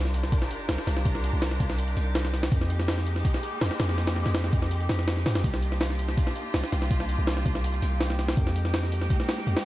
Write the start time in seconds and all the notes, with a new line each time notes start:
Already playing: C2 D4 D#4 F4 G4 A#4 G5, sub drop
0.05 snare
0.14 open hi-hat
0.23 snare
0.32 kick, open hi-hat
0.42 snare
0.51 open hi-hat
0.69 C2, snare, open hi-hat
0.78 snare
0.87 C2, snare, open hi-hat
0.97 snare
1.05 kick, open hi-hat
1.15 snare
1.24 open hi-hat
1.33 C2
1.42 snare, open hi-hat
1.51 snare
1.60 C2, kick, open hi-hat
1.70 snare
1.78 open hi-hat
1.88 closed hi-hat
1.97 C2, open hi-hat
2.15 snare, open hi-hat
2.25 snare
2.33 snare, open hi-hat
2.43 snare, open hi-hat
2.52 F2 G#3 A#3 G4, kick, open hi-hat
2.61 snare
2.70 open hi-hat
2.80 snare
2.88 snare, open hi-hat
2.98 snare
3.07 open hi-hat
3.16 snare
3.25 kick, open hi-hat
3.34 snare
3.43 open hi-hat
3.61 F2, snare, open hi-hat
3.71 snare
3.80 F2, snare, open hi-hat
3.89 snare
3.98 snare, open hi-hat
4.07 snare, open hi-hat
4.16 snare
4.26 F2, snare, open hi-hat
4.35 snare, open hi-hat
4.44 snare
4.53 F2, kick, open hi-hat
4.62 snare
4.71 open hi-hat
4.81 closed hi-hat
4.89 F2, snare, open hi-hat
4.99 snare
5.08 snare, open hi-hat
5.17 snare
5.26 G#2, snare, open hi-hat
5.35 F2, snare, open hi-hat
5.44 C2 A#3 D4 F4, kick, open hi-hat
5.54 snare
5.62 open hi-hat
5.72 snare
5.81 snare, open hi-hat
5.90 snare
5.99 open hi-hat
6.09 snare
6.17 kick, open hi-hat
6.27 snare
6.36 open hi-hat
6.54 C2, snare, open hi-hat
6.64 snare
6.72 C2, snare, open hi-hat
6.82 snare
6.91 kick, open hi-hat
7.00 snare
7.09 open hi-hat
7.18 C2
7.27 snare, open hi-hat
7.37 snare
7.46 C2, kick, open hi-hat
7.55 snare
7.64 open hi-hat
7.74 closed hi-hat
7.82 C2, open hi-hat
8.01 snare, open hi-hat
8.10 snare
8.19 snare, open hi-hat
8.28 snare, open hi-hat
8.37 F2 G#3 D#4 G4, kick, open hi-hat
8.47 snare
8.56 open hi-hat
8.65 snare
8.74 snare, open hi-hat
8.83 snare
8.92 open hi-hat
9.02 snare
9.10 kick, open hi-hat
9.20 snare
9.29 snare, open hi-hat
9.38 snare
9.47 F2, open hi-hat
9.57 snare, open hi-hat